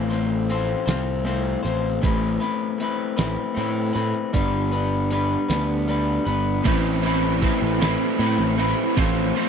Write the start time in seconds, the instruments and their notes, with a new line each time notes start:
Already playing: picked electric bass A1, clean electric guitar A2 A3 C4 F4
0.09 clean electric guitar C4 F4 C5, closed hi-hat
0.49 clean electric guitar A3 C4 F4 C5, closed hi-hat
0.86 picked electric bass C2, clean electric guitar C4 F4 C5, snare, closed hi-hat
1.25 clean electric guitar A3 C4 F4 C5, closed hi-hat
1.63 picked electric bass A1, clean electric guitar C4 F4 C5, closed hi-hat
2.01 picked electric bass A1, clean electric guitar A2 A3 C4 E4 B4, kick, closed hi-hat
2.40 clean electric guitar C4 E4 B4, closed hi-hat
2.78 clean electric guitar A3 C4 E4 B4, closed hi-hat
3.16 picked electric bass A1, clean electric guitar C4 E4 B4, snare, closed hi-hat
3.54 picked electric bass A2, clean electric guitar A3 C4 E4 B4, closed hi-hat
3.93 picked electric bass A2, clean electric guitar C4 E4 B4, closed hi-hat
4.33 picked electric bass G1, clean electric guitar G3 B3 D4 B4, kick, closed hi-hat
4.72 clean electric guitar B3 D4 B4, closed hi-hat
5.10 clean electric guitar G3 B3 D4 B4, closed hi-hat
5.49 picked electric bass D2, clean electric guitar B3 D4 B4, snare, closed hi-hat
5.88 clean electric guitar G3 B3 D4 B4, closed hi-hat
6.25 picked electric bass G1, clean electric guitar B3 D4 B4, closed hi-hat
6.64 picked electric bass A1, clean electric guitar A2 A3 C4 E4 B4, overdriven electric guitar E3, kick, crash, ride
7.02 clean electric guitar A2 A3 C4 E4, overdriven electric guitar E3, ride
7.06 clean electric guitar B4
7.41 clean electric guitar A2 A3 C4 E4 B4, overdriven electric guitar E3, kick, ride
7.62 picked electric bass A1
7.80 clean electric guitar A2 A3 C4 E4 B4, overdriven electric guitar E3, snare, ride
8.18 clean electric guitar A2 A3 C4 E4 B4, picked electric bass A2, overdriven electric guitar E3, ride
8.39 picked electric bass A1
8.57 clean electric guitar A2 A3 C4 E4 B4, overdriven electric guitar E3, ride
8.94 picked electric bass A1, clean electric guitar A2 A3 C4 F4 C5, overdriven electric guitar F3, kick, ride
9.33 clean electric guitar A2 A3 C4 F4 C5, overdriven electric guitar F3, ride